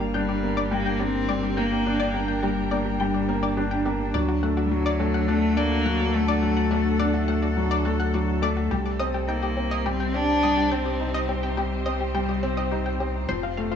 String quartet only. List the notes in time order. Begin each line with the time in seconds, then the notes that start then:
Already playing: G3 C4 D4 F5
0.32 A#4
1.04 G5
4.14 D3
4.36 A4
4.77 F#5
8.71 C3
8.96 C4
9.63 G4
9.77 C5
13.30 F3